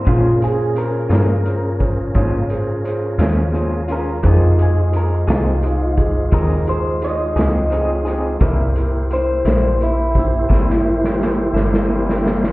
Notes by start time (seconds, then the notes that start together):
0.05 A#2 G#3 C#4 F4 G#4 A#4 C5, kick, closed hi-hat
0.09 F4
0.40 C#4 G#4 C5, closed hi-hat
0.44 G#4
0.75 C#4 G#4 A#4 C5, closed hi-hat
1.09 G2 G#3 C#4 F4 G#4 A#4 C5, snare, closed hi-hat
1.44 C#4 G#4 C5, closed hi-hat
1.80 C#4 G#4 C5, kick, closed hi-hat
2.15 G#2 A#2 G#3 C#4 F4 G#4 C5, kick, closed hi-hat
2.49 C#4 G#4 C5, closed hi-hat
2.84 C#4 G#4 C5, closed hi-hat
3.18 D#2 G#3 C#4 F4 G#4 C5, snare, closed hi-hat
3.53 A#2 G#3 C#4 F4 G#4 C5, closed hi-hat
3.88 G#3 C#4 F4 G#4 C5, closed hi-hat
3.92 A#4
4.22 F2 F3 G#3 C4 D#4 F4 G4 G#4 C5, kick, closed hi-hat
4.27 F4
4.57 D#4 G4 G#4, closed hi-hat
4.62 G#4
4.92 D#4 G4 G#4, closed hi-hat
4.97 A#4
5.27 C2 C4 D#4 F4 G4 G#4, snare, closed hi-hat
5.63 D#4 G4 G#4, closed hi-hat
5.97 D#4 G4 G#4, kick, closed hi-hat
6.32 D#2 F3 C4 D#4 G4 G#4 A#4, kick, closed hi-hat
6.67 D#4 G4 G#4 C5, closed hi-hat
7.01 D#4 G4 G#4 D#5, closed hi-hat
7.36 C#2 C4 D#4 G4 G#4, snare, closed hi-hat
7.70 F3 C4 D#4 G4 G#4, closed hi-hat
7.93 C#5
8.05 C4 D#4 G4 G#4, closed hi-hat
8.40 C2 C3 G3 A#3 E4 G4 A#4 C5, kick, closed hi-hat
8.76 E4 G4 A#4, closed hi-hat
9.11 E4 G4 A#4 C5, closed hi-hat
9.45 A#1 G3 A#3 E4 G4 A#4 C5, snare, closed hi-hat
9.80 E4 G4 A#4, closed hi-hat
10.15 E4 G4 C5, kick, closed hi-hat
10.19 E4
10.49 G#1 C3 G3 A#3 E4 G4 C5, kick, snare
10.70 snare
10.84 E4 G4 A#4
11.04 snare
11.19 E4 G4 A#4, snare
11.54 G1 G3 A#3 E4 G4 A#4, snare
11.74 snare
11.88 C3 G3 A#3 E4 G4 A#4
12.09 snare
12.23 G3 A#3 E4 G4 A#4, snare
12.44 snare